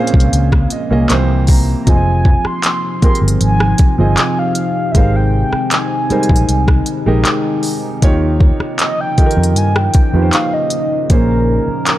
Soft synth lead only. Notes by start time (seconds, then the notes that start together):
Already playing: F5
1.82 A#5
1.89 G#5
2.47 C6
3.04 C6
3.43 G#5
4.00 G#5
4.39 F5
4.92 E5
4.97 F5
5.16 G5
5.73 G#5
8.81 D#5
9.01 G5
9.58 G#5
9.77 G5
10.34 F5
10.54 D#5
11.12 A#4